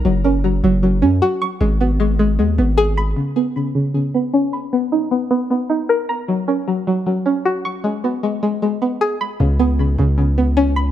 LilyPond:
<<
  \new Staff \with { instrumentName = "Synth pluck" } { \time 4/4 \key b \major \tempo 4 = 154 fis8 cis'8 fis8 fis8 fis8 cis'8 fis'8 cis'''8 | gis8 b8 gis8 gis8 gis8 b8 gis'8 b''8 | cis8 b8 cis8 cis8 cis8 b8 cis'8 b''8 | b8 dis'8 b8 b8 b8 dis'8 ais'8 ais''8 |
fis8 cis'8 fis8 fis8 fis8 cis'8 fis'8 cis'''8 | gis8 b8 gis8 gis8 gis8 b8 gis'8 b''8 | cis8 b8 cis8 cis8 cis8 b8 cis'8 b''8 | }
  \new Staff \with { instrumentName = "808-style bass" } { \clef bass \time 4/4 \key b \major fis,,4. fis,,4 fis,8 r4 | gis,,2 dis,8 gis,,4. | r1 | r1 |
r1 | r1 | cis,4. cis,2~ cis,8 | }
>>